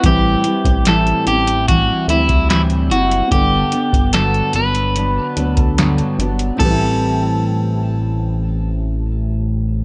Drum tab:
CC |----------------|----------------|x---------------|
HH |x-xxxxxxx-xxxxxx|x-xxxxxxx-xxxxxx|----------------|
SD |----o-------o---|----o-------o---|----------------|
BD |o--o----o--o----|o--o-------o----|o---------------|